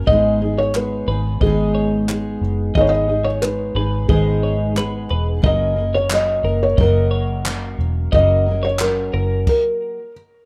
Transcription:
0.07 fingered electric bass G#1, steel-string acoustic guitar G#2 D#3 G#3 B3 D#4 G#4, felt piano D#5, clean electric guitar D#5, kick
0.42 steel-string acoustic guitar G#3 B3 D#4 G#4
0.58 felt piano C#5, clean electric guitar C#5
0.74 steel-string acoustic guitar G#3 B3 D#4 G#4, felt piano B4, clap
1.08 fingered electric bass G#1, steel-string acoustic guitar G#3 B3 D#4 G#4, clean electric guitar B4
1.41 fingered electric bass G#1, steel-string acoustic guitar G#2 D#3 G#3 B3 D#4 G#4, felt piano G#4, clean electric guitar D#5, kick
1.75 clean electric guitar C#5
2.09 steel-string acoustic guitar G#3 B3 D#4 G#4, clap
2.41 fingered electric bass F#1
2.74 fingered electric bass G#1, steel-string acoustic guitar G#2 D#3 G#3 B3 D#4 G#4, clean electric guitar D#5, felt piano D#5, kick
2.81 felt piano C#5
2.89 felt piano D#5
3.08 steel-string acoustic guitar G#3 B3 D#4 G#4
3.24 felt piano C#5, clean electric guitar C#5
3.42 steel-string acoustic guitar G#3 B3 D#4 G#4, felt piano B4, clap
3.75 fingered electric bass G#1, steel-string acoustic guitar G#3 B3 D#4 G#4, clean electric guitar B4
4.08 fingered electric bass G#1, steel-string acoustic guitar G#2 D#3 G#3 B3 D#4 G#4, felt piano G#4, clean electric guitar D#5, kick
4.43 clean electric guitar C#5
4.75 steel-string acoustic guitar G#3 B3 D#4 G#4, clean electric guitar B4, clap
5.11 fingered electric bass E1, clean electric guitar B4
5.42 fingered electric bass F#1, steel-string acoustic guitar F#2 C#3 F#3 A#3 C#4 A#4, clean electric guitar D#5, kick
5.46 felt piano D#5
5.76 steel-string acoustic guitar F#3 A#3 C#4 A#4
5.95 clean electric guitar C#5, felt piano C#5
6.09 steel-string acoustic guitar F#3 A#3 C#4 A#4, clap
6.14 felt piano D#5
6.44 fingered electric bass F#1, steel-string acoustic guitar F#3 A#3 C#4 A#4, clean electric guitar A#4
6.63 felt piano C#5
6.77 fingered electric bass F#1, steel-string acoustic guitar F#2 C#3 F#3 A#3 C#4 A#4, felt piano A#4, clean electric guitar D#5, kick
7.11 clean electric guitar C#5
7.45 steel-string acoustic guitar F#3 A#3 C#4 A#4, clap
7.78 fingered electric bass E1
8.12 fingered electric bass F#1, steel-string acoustic guitar F#2 C#3 F#3 A#3 C#4 A#4, clean electric guitar D#5, felt piano D#5, kick
8.48 steel-string acoustic guitar F#3 A#3 C#4 A#4
8.63 clean electric guitar C#5, felt piano C#5
8.79 steel-string acoustic guitar F#3 A#3 C#4 A#4, felt piano A#4, clap
9.14 fingered electric bass F#1, clean electric guitar A#4
9.47 felt piano A#4, kick, crash

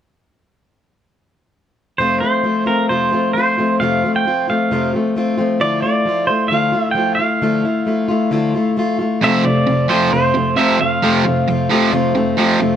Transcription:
1.98 steel-string acoustic guitar F2 C3 F3 A3 C4 F4, pedal steel guitar C5
2.20 steel-string acoustic guitar F3 A3 C4 F4, pedal steel guitar C5
2.43 steel-string acoustic guitar F3 A3 C4 F4
2.66 steel-string acoustic guitar F3 A3 C4 F4, pedal steel guitar A#4
2.89 steel-string acoustic guitar F2 C3 F3 A3 C4 F4, pedal steel guitar C5
3.12 steel-string acoustic guitar F3 A3 C4 F4
3.33 steel-string acoustic guitar F3 A3 C4, pedal steel guitar C5
3.38 steel-string acoustic guitar F4
3.58 steel-string acoustic guitar F3 A3 C4 F4
3.80 steel-string acoustic guitar F2 C3 F3 A3 C4 F4, pedal steel guitar F5
4.04 steel-string acoustic guitar F3 A3 C4 F4
4.16 pedal steel guitar G5
4.25 steel-string acoustic guitar F3 A3 C4 F4
4.48 steel-string acoustic guitar F3 A3 C4 F4, pedal steel guitar F5
4.71 steel-string acoustic guitar F2 C3 F3 A3 C4 F4
4.94 steel-string acoustic guitar F3 A3 C4 F4
5.15 steel-string acoustic guitar F3 A3 C4 F4
5.38 steel-string acoustic guitar F3 A3 C4 F4
5.60 steel-string acoustic guitar D3 F3 A3 E4 F4, pedal steel guitar D5
5.82 steel-string acoustic guitar A3 E4 F4, pedal steel guitar D5
6.06 steel-string acoustic guitar F3 A3 E4 F4
6.27 steel-string acoustic guitar A3 E4 F4, pedal steel guitar C5
6.48 steel-string acoustic guitar D3 F3 A3, pedal steel guitar F5
6.52 steel-string acoustic guitar E4 F4
6.72 steel-string acoustic guitar A3 E4 F4
6.91 steel-string acoustic guitar F3, pedal steel guitar G5
6.95 steel-string acoustic guitar A3 E4 F4
7.15 steel-string acoustic guitar F4, pedal steel guitar F5
7.20 steel-string acoustic guitar A3 E4
7.42 steel-string acoustic guitar D3 F3 A3 E4 F4
7.64 steel-string acoustic guitar A3 E4 F4
7.85 steel-string acoustic guitar F3 A3 E4 F4
8.08 steel-string acoustic guitar A3 E4 F4
8.31 steel-string acoustic guitar D3 F3 A3 E4 F4
8.54 steel-string acoustic guitar A3 E4 F4
8.77 steel-string acoustic guitar F3 A3 E4 F4
8.99 steel-string acoustic guitar A3 E4 F4
9.21 overdriven electric guitar F2 C3 F3, steel-string acoustic guitar F2 C3 F3 A3 C4 F4, pedal steel guitar E5
9.44 overdriven electric guitar F2 C3, steel-string acoustic guitar F3 A3 C4 F4, pedal steel guitar D5
9.67 overdriven electric guitar F2 C3, steel-string acoustic guitar F3 A3 C4
9.71 steel-string acoustic guitar F4
9.88 overdriven electric guitar F2 C3 F3, steel-string acoustic guitar A3 C4 F4, pedal steel guitar C5
9.92 steel-string acoustic guitar F3
10.12 overdriven electric guitar F2 C3, steel-string acoustic guitar F2 C3 F3 A3 C4 F4, pedal steel guitar C5
10.34 overdriven electric guitar F2 C3, steel-string acoustic guitar F3 A3 C4 F4
10.56 overdriven electric guitar F2 C3 F3, steel-string acoustic guitar F3 A3 C4 F4, pedal steel guitar E5
10.79 overdriven electric guitar F2 C3, steel-string acoustic guitar F3 A3 C4 F4, pedal steel guitar F5
11.02 overdriven electric guitar F2 C3 F3, steel-string acoustic guitar F2 C3 F3 A3 C4 F4
11.24 overdriven electric guitar F2 C3, steel-string acoustic guitar F3 A3 C4 F4
11.48 overdriven electric guitar F2 C3, steel-string acoustic guitar F3 A3 C4 F4
11.70 overdriven electric guitar F2 C3 F3, steel-string acoustic guitar F3 A3 C4 F4
11.92 steel-string acoustic guitar F2 C3 F3 A3 C4 F4, overdriven electric guitar F2 C3
12.14 overdriven electric guitar F2 C3, steel-string acoustic guitar F3 A3 C4 F4
12.37 overdriven electric guitar F2 C3 F3, steel-string acoustic guitar F3 A3 C4 F4
12.59 overdriven electric guitar F2 C3, steel-string acoustic guitar F3 A3 C4 F4

